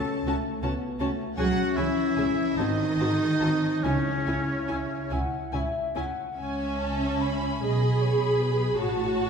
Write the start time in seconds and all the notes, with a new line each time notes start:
Already playing: C#3 A3 C#4 A4 A5
0.26 C#2 A3 C#4 F#4 A5
0.62 C#2 B3 C#4 F#4 A5
0.99 C#2 A3 C#4 F#4 A5
1.37 C#2 F#3 C#4 F#4 G#4 F#5 G#5
1.77 C#2 E3 C#4 E4 G#4 E5 G#5
2.16 C#2 C#4 G#4 G#5
2.56 G#1 D#3 C4 D#4 F#4 D#5 A5
2.97 G#1 G#3 C4 F#4 A5
3.40 G#1 C4 F#4 A5
3.83 C#2 C#3 C#4 E4 C#5 G#5
4.26 C#2 C#4 E4 G#5
4.68 C#2 C#4 E4 G#5
5.10 C#2 C#4 E4 F#5 G#5
5.52 C#2 C#4 E4 E5 G#5
5.96 C#2 C#4 E4 F#5 G#5
6.38 C#2 C#4 E5 G#5
6.79 A5
7.21 B5
7.64 B1 B2 G#4 D#5 B5
8.04 C#5
8.42 B4
8.78 A1 A2 F#4 C#5 A5